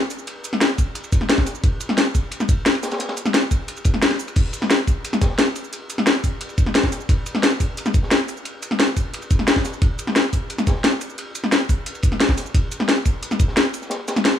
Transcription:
0.10 open hi-hat, ride, cabasa
0.19 cabasa
0.27 closed hi-hat, ride
0.44 closed hi-hat, ride, cabasa
0.53 snare
0.61 snare, closed hi-hat, ride
0.78 kick, open hi-hat, ride, cabasa
0.95 closed hi-hat, ride
1.04 ride, cabasa
1.12 kick, closed hi-hat, ride, cabasa
1.21 snare
1.29 snare, closed hi-hat, ride
1.38 kick, snare
1.46 snare, open hi-hat, ride, cabasa
1.55 cabasa
1.64 kick, closed hi-hat, ride
1.80 closed hi-hat, ride, cabasa
1.89 snare
1.97 snare, closed hi-hat, ride
2.15 kick, open hi-hat, ride, cabasa
2.31 closed hi-hat, ride
2.40 snare, cabasa
2.49 kick, closed hi-hat, ride, cabasa
2.66 snare, closed hi-hat, ride
2.75 ride
2.83 snare, open hi-hat, ride, cabasa
2.91 snare, ride, cabasa
2.99 snare, closed hi-hat, ride
3.09 snare, ride
3.17 closed hi-hat, ride, cabasa
3.26 snare, cabasa
3.34 snare, closed hi-hat, ride
3.51 kick, open hi-hat, ride, cabasa
3.68 closed hi-hat, ride
3.77 ride, cabasa
3.84 kick, closed hi-hat, ride, cabasa
3.94 snare
4.02 snare, closed hi-hat, ride
4.11 snare, ride
4.19 open hi-hat, cabasa
4.28 ride, cabasa
4.36 kick, closed hi-hat, crash, ride
4.53 closed hi-hat, ride, cabasa
4.62 snare
4.70 snare, closed hi-hat, ride
4.87 kick, open hi-hat, ride, cabasa
5.04 closed hi-hat, ride
5.13 snare, cabasa
5.21 kick, snare, closed hi-hat, ride, cabasa
5.30 snare
5.39 snare, closed hi-hat, ride
5.56 open hi-hat, ride, cabasa
5.64 cabasa
5.73 closed hi-hat, ride
5.90 closed hi-hat, ride, cabasa
5.98 snare
6.07 snare, closed hi-hat, ride
6.24 kick, open hi-hat, ride, cabasa
6.41 closed hi-hat, ride
6.49 ride, cabasa
6.58 kick, closed hi-hat, ride, cabasa
6.66 snare
6.74 snare, closed hi-hat, ride
6.83 kick, snare
6.92 snare, open hi-hat, ride, cabasa
7.01 cabasa
7.09 kick, closed hi-hat, ride
7.26 closed hi-hat, ride, cabasa
7.35 snare
7.43 snare, closed hi-hat, ride
7.60 kick, open hi-hat, ride, cabasa
7.77 closed hi-hat, ride
7.86 snare, cabasa
7.94 kick, closed hi-hat, ride, cabasa
8.03 snare
8.11 snare, closed hi-hat, ride
8.28 open hi-hat, ride, cabasa
8.37 cabasa
8.45 closed hi-hat, ride
8.62 closed hi-hat, ride, cabasa
8.71 snare
8.80 snare, closed hi-hat, ride
8.96 kick, open hi-hat, ride, cabasa
9.14 closed hi-hat, ride
9.22 ride, cabasa
9.30 kick, closed hi-hat, ride, cabasa
9.39 snare
9.48 snare, closed hi-hat, ride
9.56 kick, snare
9.64 snare, open hi-hat, ride, cabasa
9.73 cabasa
9.82 kick, closed hi-hat, ride
9.99 closed hi-hat, ride, cabasa
10.07 snare
10.16 snare, closed hi-hat, ride
10.33 kick, open hi-hat, ride, cabasa
10.50 closed hi-hat, ride
10.58 snare, cabasa
10.67 kick, snare, closed hi-hat, ride, cabasa
10.75 snare
10.84 snare, closed hi-hat, ride
11.01 open hi-hat, ride, cabasa
11.10 cabasa
11.18 closed hi-hat, ride
11.35 closed hi-hat, ride, cabasa
11.44 snare
11.52 snare, closed hi-hat, ride
11.69 kick, open hi-hat, ride, cabasa
11.86 closed hi-hat, ride
11.95 ride, cabasa
12.03 kick, closed hi-hat, ride, cabasa
12.12 snare
12.20 snare, closed hi-hat, ride
12.29 kick, snare
12.37 snare, open hi-hat, ride, cabasa
12.46 cabasa
12.54 kick, closed hi-hat, ride
12.72 closed hi-hat, ride, cabasa
12.80 snare
12.88 snare, closed hi-hat, ride
13.05 kick, open hi-hat, ride, cabasa
13.22 closed hi-hat, ride
13.31 snare, cabasa
13.39 kick, closed hi-hat, ride, cabasa
13.48 snare
13.57 snare, closed hi-hat, ride
13.74 open hi-hat, ride, cabasa
13.82 snare, cabasa
13.90 snare, closed hi-hat, ride
14.08 snare, closed hi-hat, ride, cabasa
14.16 snare, cabasa
14.25 snare, closed hi-hat, ride

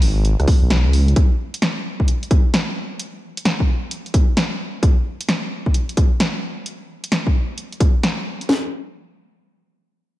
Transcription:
0.02 G#1, open hi-hat
0.25 closed hi-hat
0.39 C#2, cross-stick, closed hi-hat
0.48 kick, open hi-hat
0.62 B1
0.70 snare, closed hi-hat
0.85 C#2
0.93 open hi-hat
1.08 closed hi-hat
1.16 kick, closed hi-hat
1.54 closed hi-hat
1.62 snare, closed hi-hat
2.00 kick
2.08 closed hi-hat
2.23 closed hi-hat
2.31 kick, closed hi-hat
2.54 snare, closed hi-hat
3.00 closed hi-hat
3.37 closed hi-hat
3.45 snare, closed hi-hat
3.60 kick
3.91 closed hi-hat
4.06 closed hi-hat
4.14 kick, closed hi-hat
4.37 snare, closed hi-hat
4.83 kick, closed hi-hat
5.21 closed hi-hat
5.29 snare, closed hi-hat
5.66 kick
5.74 closed hi-hat
5.89 closed hi-hat
5.97 kick, closed hi-hat
6.20 snare, closed hi-hat
6.66 closed hi-hat
7.04 closed hi-hat
7.12 snare, closed hi-hat
7.27 kick
7.58 closed hi-hat
7.72 closed hi-hat
7.80 kick, closed hi-hat
8.03 snare, closed hi-hat
8.41 closed hi-hat
8.49 snare

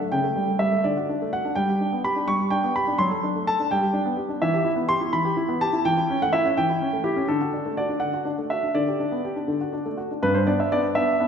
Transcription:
0.01 A3
0.12 C#3 G5
0.24 A3
0.36 G3
0.48 A3
0.59 G3 E5
0.72 A3
0.84 D3 D5
0.97 F#4
1.09 D4
1.22 A3
1.33 F#4 F#5
1.45 D4
1.55 G3 G5
1.69 G4
1.81 D4
1.93 B3
2.04 G4 B5
2.16 D4
2.28 G3 C#6
2.39 G4
2.50 D4 G5
2.64 B3
2.76 G4 B5
2.87 D4
2.98 F#3 C6
3.11 A4
3.23 D4
3.35 A3
3.47 A4 A5
3.60 D4
3.71 G3 G5
3.81 G4
3.93 D4
4.06 B3
4.17 G4
4.29 D4
4.42 E3 E5
4.54 G4
4.65 E4
4.76 B3
4.89 G4 C6
5.01 E4
5.13 E3 B5
5.25 G4
5.37 E4
5.49 B3
5.61 G4 A5
5.73 E4
5.85 E3 G5
5.97 E4
6.10 C#4
6.22 A3 F#5
6.33 E4 E5
6.45 C#4
6.57 E3 G5
6.70 E4
6.82 C#4
6.93 A3
7.04 E4 G4
7.16 C#4
7.28 D3 A4
7.41 F#4
7.53 D4
7.65 A3
7.77 F#4 D5
7.89 D4
8.00 D3 F#5
8.14 F#4
8.25 D4
8.38 A3
8.50 F#4 E5
8.63 D4
8.75 D3 D5
8.88 G4
9.00 D4
9.12 B3
9.25 G4
9.36 D4
9.48 D3
9.61 F#4
9.73 D4
9.85 A3
9.97 F#4
10.11 D4
10.23 G2 B4
10.34 C5
10.47 B3 D4 D5
10.60 E5
10.72 B3 D4 D5
10.95 B3 D4 E5
11.20 B3 D4

